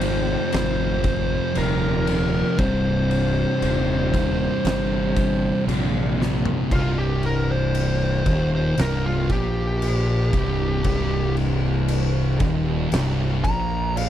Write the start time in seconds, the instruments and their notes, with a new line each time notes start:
Already playing: fingered electric bass G#1, distorted electric guitar F2 C3 F3, lead electric guitar C5
0.01 distorted electric guitar F2 C3 F3, ride
0.52 fingered electric bass G#1, lead electric guitar C5, snare, ride
1.04 kick, ride
1.54 fingered electric bass D#1, distorted electric guitar F2 C3 F3, lead electric guitar A#4, ride
2.07 distorted electric guitar F2 C3 F3, ride
2.57 fingered electric bass C1, distorted electric guitar C2 G2 C3, lead electric guitar C5, kick, ride
3.11 ride
3.61 fingered electric bass D#1, ride
4.12 distorted electric guitar C2 G2 C3, kick, ride
4.64 fingered electric bass G1, snare, ride
5.16 kick, ride
5.67 fingered electric bass A#1, distorted electric guitar C2 G2 C3, ride
6.19 distorted electric guitar C2 G2 C3, snare
6.45 floor tom
6.71 fingered electric bass C1, distorted electric guitar C2, lead electric guitar F4, kick, crash
6.99 lead electric guitar G4
7.23 lead electric guitar A#4, crash
7.52 lead electric guitar C5
7.75 crash
8.26 fingered electric bass D#1, distorted electric guitar D#2, kick, crash
8.55 lead electric guitar C5
8.77 fingered electric bass C1, distorted electric guitar C2, snare, crash
8.81 lead electric guitar A#4
9.06 lead electric guitar F4
9.28 fingered electric bass A#1, distorted electric guitar A#2, lead electric guitar G4, kick, crash
9.82 crash
10.32 fingered electric bass C1, distorted electric guitar C2, kick, crash
10.84 fingered electric bass C1, distorted electric guitar C2, kick, crash
11.37 crash
11.88 crash
12.40 fingered electric bass D#1, distorted electric guitar D#2, kick, crash
12.92 fingered electric bass C1, distorted electric guitar C2, snare, crash
13.44 fingered electric bass A#1, distorted electric guitar A#2, lead electric guitar A#5, kick, crash
13.97 lead electric guitar F5, crash